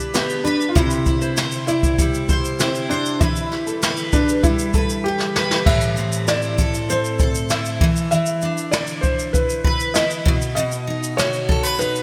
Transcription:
0.00 1.80 G3 medium
0.00 0.82 D4 medium
0.00 0.17 E4 medium
0.00 0.14 G4 medium
0.00 0.43 B4 medium
0.00 shaker soft
0.14 0.46 B3 medium
0.14 1.06 G4 medium
0.14 snare medium
0.14 shaker medium
0.30 shaker soft
0.44 0.69 D4 medium
0.44 0.76 B4 medium
0.44 shaker soft
0.61 shaker soft
0.69 0.76 F4 medium
0.75 3.21 C3 medium
0.75 1.66 E4 medium
0.75 1.36 C5 medium
0.75 1.05 E5 loud
0.75 kick loud
0.75 shaker medium
0.90 shaker soft
1.06 1.68 E4 medium
1.06 kick medium
1.06 shaker soft
1.22 1.51 C5 medium
1.22 shaker soft
1.37 2.29 C5 medium
1.37 snare loud
1.37 shaker medium
1.52 shaker soft
1.67 2.62 E4 medium
1.67 2.60 E4 medium
1.67 1.83 D5 medium
1.67 shaker medium
1.83 kick medium
1.83 shaker medium
1.99 4.43 G3 medium
1.99 kick medium
1.99 shaker medium
2.14 shaker soft
2.29 2.58 C5 medium
2.29 2.89 C5 medium
2.29 kick medium
2.29 shaker soft
2.45 shaker soft
2.59 2.91 C4 medium
2.59 3.51 E4 medium
2.59 snare loud
2.59 shaker medium
2.75 shaker soft
2.89 3.22 D4 medium
2.89 3.21 C5 medium
2.89 shaker soft
3.06 shaker soft
3.20 6.71 E3 medium
3.20 4.15 E4 medium
3.20 3.81 B4 medium
3.20 3.50 E5 medium
3.20 kick loud
3.20 shaker medium
3.36 shaker medium
3.52 4.13 G4 medium
3.52 snare soft
3.67 3.96 A4 medium
3.67 shaker medium
3.82 4.74 B4 medium
3.82 snare loud
3.82 shaker medium
3.97 shaker medium
4.13 4.45 D4 medium
4.13 5.05 G4 medium
4.13 4.28 B4 medium
4.13 kick medium
4.13 shaker medium
4.29 shaker medium
4.43 6.61 G3 medium
4.43 5.07 E4 loud
4.43 kick loud
4.43 shaker medium
4.59 shaker medium
4.74 5.04 A4 medium
4.74 5.35 B4 medium
4.74 kick medium
4.74 shaker medium
4.89 shaker medium
5.04 5.47 G4 medium
5.04 6.27 G4 medium
5.20 snare medium
5.36 5.50 B4 medium
5.36 5.73 B4 medium
5.36 snare medium
5.51 snare medium
5.66 7.87 A2 medium
5.66 6.29 E5 medium
5.66 kick loud
5.66 crash loud
5.81 shaker medium
5.97 6.89 C4 medium
5.97 shaker soft
6.12 shaker medium
6.28 7.50 E4 medium
6.28 6.91 D5 medium
6.28 snare loud
6.28 shaker medium
6.42 shaker medium
6.58 7.20 A4 medium
6.58 kick medium
6.58 shaker medium
6.74 shaker medium
6.90 7.87 C4 medium
6.90 7.53 C5 medium
6.90 shaker medium
7.05 shaker soft
7.19 9.64 A4 medium
7.19 kick medium
7.19 shaker soft
7.35 shaker medium
7.50 8.45 E4 medium
7.50 7.93 E5 medium
7.50 snare loud
7.50 shaker medium
7.65 shaker medium
7.81 8.11 E3 medium
7.81 kick loud
7.96 shaker medium
8.11 10.33 E3 medium
8.11 8.74 E5 medium
8.11 shaker medium
8.26 shaker medium
8.42 9.34 D4 medium
8.42 shaker soft
8.58 shaker medium
8.71 9.94 E4 medium
8.71 9.04 D5 loud
8.71 snare loud
8.71 shaker medium
8.87 shaker medium
9.01 9.34 C5 medium
9.01 kick medium
9.01 shaker medium
9.19 shaker medium
9.33 9.97 B4 medium
9.33 kick medium
9.33 shaker medium
9.50 shaker soft
9.64 11.48 B4 medium
9.64 kick medium
9.80 shaker soft
9.94 10.32 E4 medium
9.94 10.38 D#5 medium
9.94 snare loud
9.94 shaker medium
10.10 shaker medium
10.25 10.55 B2 medium
10.25 kick loud
10.42 shaker soft
10.55 12.03 B2 medium
10.55 11.19 D#5 medium
10.55 shaker medium
10.72 shaker medium
10.87 11.77 D#4 medium
11.03 shaker medium
11.17 12.03 F#4 medium
11.17 11.81 C#5 medium
11.17 snare loud
11.17 shaker medium
11.33 shaker medium
11.49 11.63 A4 medium
11.49 kick medium
11.63 12.03 B4 medium
11.63 shaker medium
11.79 12.03 D#4 medium
11.79 12.03 B4 medium
11.79 shaker medium
11.96 shaker medium

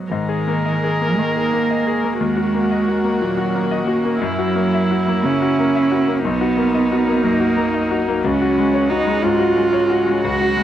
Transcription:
0.00 0.11 F#3 soft
0.00 0.14 B3 soft
0.00 0.14 F#4 soft
0.00 0.14 D#5 soft
0.10 2.17 G#2 soft
0.10 1.20 D#3 medium
0.10 2.17 D#4 soft
0.10 2.17 G#4 soft
0.10 6.20 A#4 soft
0.10 2.18 A#4 soft
0.29 0.58 G#4 soft
0.47 0.76 A#3 soft
0.66 0.94 D#5 soft
0.84 1.12 G#4 soft
1.01 1.29 A#3 soft
1.19 1.47 D#3 soft
1.19 2.22 A#3 medium
1.36 1.64 G#4 soft
1.53 1.81 A#3 soft
1.70 1.98 D#5 soft
1.87 2.14 G#4 soft
2.04 2.21 A#3 soft
2.20 4.17 D#2 soft
2.20 3.23 G#3 medium
2.20 6.25 C#4 soft
2.20 4.17 F#4 soft
2.20 4.22 F#4 soft
2.37 2.64 F#4 soft
2.54 2.81 A#3 soft
2.71 2.98 D#5 soft
2.88 3.15 F#4 soft
3.04 3.31 A#3 soft
3.21 3.48 A#2 soft
3.21 3.86 F#3 medium
3.37 3.64 F#4 soft
3.55 3.81 A#3 soft
3.71 3.98 D#5 soft
3.87 4.23 A#3 medium
3.87 4.14 F#4 soft
4.05 4.21 A#3 soft
4.21 6.20 F#2 medium
4.21 5.26 F#3 medium
4.21 6.20 E4 soft
4.21 6.25 E4 soft
4.39 4.66 F#4 soft
4.55 4.83 A#3 soft
4.74 5.01 E5 soft
4.91 5.18 F#4 soft
5.07 5.35 A#3 soft
5.25 5.52 C#3 soft
5.25 6.24 C#4 medium
5.42 5.68 F#4 soft
5.59 5.85 A#3 soft
5.75 6.01 E5 soft
5.91 6.18 F#4 soft
6.08 6.24 A#3 soft
6.25 8.19 B1 medium
6.25 10.63 F#3 medium
6.25 7.25 B3 medium
6.25 8.25 D#4 medium
6.25 8.24 D#4 soft
6.25 8.24 A#4 soft
6.41 6.68 F#4 medium
6.57 6.84 A#3 soft
6.74 7.01 D#5 soft
6.92 7.18 F#4 soft
7.07 7.34 A#3 soft
7.24 7.50 F#2 soft
7.24 7.90 A#3 medium
7.40 7.67 F#4 soft
7.57 7.83 A#3 soft
7.74 8.00 D#5 soft
7.91 8.17 F#4 medium
8.08 8.24 A#3 soft
8.23 10.20 C#2 medium
8.23 10.63 G#3 medium
8.23 10.63 C#4 soft
8.23 8.91 C#4 medium
8.23 10.63 F#4 medium
8.42 8.67 F#4 soft
8.58 8.84 G#3 soft
8.74 9.00 C#5 soft
8.90 9.24 D#4 medium
8.90 9.17 F#4 soft
9.07 9.33 G#3 medium
9.22 9.50 G#2 medium
9.22 10.23 F4 medium
9.40 9.66 F#4 medium
9.56 9.83 G#3 soft
9.73 10.00 C#5 soft
9.90 10.17 F#4 medium
10.07 10.34 G#3 soft
10.24 10.63 C#2 medium
10.24 10.63 F#4 loud
10.41 10.63 F#4 medium
10.57 10.63 G#3 medium

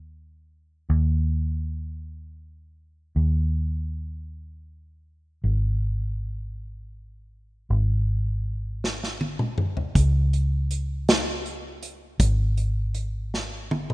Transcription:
0.00 0.86 D#2 medium
0.90 3.12 D#2 medium
3.16 5.41 D#2 medium
5.44 7.66 G#1 medium
7.70 9.91 G#1 medium
8.84 snare soft
9.03 snare soft
9.21 high tom medium
9.39 mid tom medium
9.58 mid tom medium
9.77 floor tom medium
9.95 12.16 C#2 loud
9.95 kick medium
9.95 closed hi-hat medium
10.33 closed hi-hat soft
10.71 closed hi-hat medium
11.09 snare loud
11.09 closed hi-hat medium
11.46 closed hi-hat soft
11.83 closed hi-hat medium
12.19 13.94 G#1 loud
12.19 kick loud
12.19 closed hi-hat medium
12.57 closed hi-hat soft
12.95 closed hi-hat medium
13.34 snare soft
13.71 high tom medium
13.90 mid tom medium

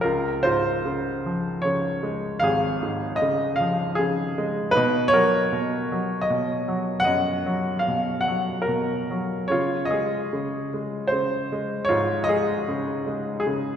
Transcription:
0.01 2.39 C#2 medium
0.01 0.43 F4 medium
0.01 0.40 A#4 medium
0.43 2.00 G#2 soft
0.43 1.61 F4 medium
0.43 1.67 C5 medium
0.85 1.64 C#3 soft
1.26 2.77 F3 soft
1.62 3.16 C#3 soft
1.62 2.37 C#5 medium
2.03 3.55 G#3 medium
2.40 4.70 G#1 medium
2.40 3.21 F5 medium
2.44 3.56 G#4 medium
2.83 4.33 G#2 soft
3.16 3.58 D#5 medium
3.22 3.98 C#3 medium
3.56 3.97 F5 medium
3.60 4.71 F3 soft
3.95 4.72 C#3 medium
3.95 4.69 G#4 medium
4.38 4.74 G#3 medium
4.71 5.86 D#4 medium
4.71 5.08 B4 loud
4.77 5.51 B2 medium
5.08 6.29 C#5 loud
5.14 5.90 F#3 medium
5.14 6.24 A#4 medium
5.52 6.29 B2 medium
5.92 6.67 F#3 soft
6.22 6.99 D#5 medium
6.30 7.83 B2 medium
6.68 7.45 F#3 medium
7.00 7.85 F#5 loud
7.04 9.46 F#2 medium
7.04 8.22 D#5 medium
7.46 8.26 F#3 soft
7.79 8.20 F5 medium
7.88 8.67 B2 soft
8.21 8.66 F#5 medium
8.28 9.09 F#3 soft
8.62 9.43 A#4 medium
8.68 9.48 B2 soft
9.11 9.50 F#3 soft
9.48 10.31 C#3 medium
9.48 10.68 F4 medium
9.48 9.91 C#5 medium
9.85 11.04 D#5 medium
9.91 10.72 G#3 soft
9.91 11.07 G#4 medium
10.33 11.11 C#3 soft
10.74 11.51 G#3 soft
11.07 11.84 C5 medium
11.12 12.64 C#3 soft
11.52 12.28 G#3 medium
11.85 12.23 C#5 medium
11.89 13.76 G#2 medium
11.89 13.02 F4 medium
12.24 13.46 D#5 loud
12.29 13.05 G#3 soft
12.29 13.38 G#4 medium
12.68 13.45 C#3 medium
13.07 13.76 G#3 soft
13.40 13.76 G#4 medium
13.47 13.76 C#3 medium

